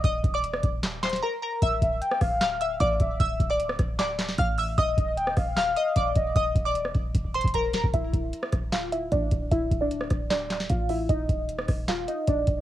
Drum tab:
HH |x-----x-----x-----x-----x-----x-x-x-------------|x-----x-----x-----o-----x-----x-----x-----x-----|x-----x-----x-----x-----x-----x-----x-----o-----|x-----x-----x-----o-----x-----x-----x-----x-----|
CP |------------------------x-----x-----------------|------------------------x-----------------------|------------------------x-----x-----------------|------------------------x-----------------------|
SD |---------------r--------o-----o--o--------------|---------------r--r-----o-----------------------|---------------r--r-----o-----o--o--------------|---------------r--r-----o-----------------------|
BD |o-----o-----------o-----------------------------|o-----o-----------o-----------------o-----o-----|o-----o-----------o-----------------o-----------|o-----o-----------o-----------------o-----o-----|

HH |x-----x-----x-----x-----x-----x-x-x-x-----x-----|x-----x-----x-----x-----x-----x-----x-----x-----|x-----x-----x-----x-----x-----x-----x-----o-----|x-----x-----x-----o-----x-----x-----x-----x-----|
CP |------------------------------------------------|------------------------x-----------------------|------------------------x-----x-----------------|------------------------x-----------------------|
SD |---------------r--------------------------o-----|---------------r--r-----o-----------------------|---------------r--r-----o-----o--o--------------|---------------r--r-----o-----------------------|
BD |o-----o-----------o-----o--o-----o--o--------o--|o-----o-----------o-----------------o-----o-----|o-----o-----------o-----------------o-----------|o-----o-----------o-----------------o-----o-----|